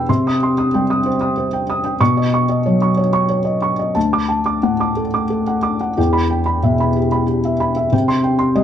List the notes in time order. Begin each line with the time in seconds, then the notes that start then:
Already playing: E2 B2 B4 G5 B5 E6
0.09 C3 C6
0.27 D#6
0.43 C6
0.58 D#6
0.74 G3 G5
0.90 D#6
1.06 C5
1.21 D#6
1.38 C5
1.53 G5
1.70 D#6
1.84 G5
2.01 B2 C#6
2.17 D#5
2.34 C#6
2.49 D#5
2.66 F#3 C#5
2.82 C#6
2.97 C#5
3.13 C#6
3.29 C#5
3.45 D#5
3.62 C#6
3.79 D#5
3.95 D2 A5
4.13 D6
4.29 A5
4.46 D6
4.63 A2 F#5
4.80 D6
4.97 A4
5.14 D6
5.30 A4
5.47 F#5
5.63 D6
5.81 F#5
5.98 E2 G5
6.13 B5
6.30 G5
6.46 B5
6.63 B2 E5
6.80 B5
6.96 G4
7.12 B5
7.27 G4
7.45 E5
7.60 B5
7.76 E5
7.92 C3 G5
8.08 C6
8.23 G5
8.39 C6
8.55 G3 D#5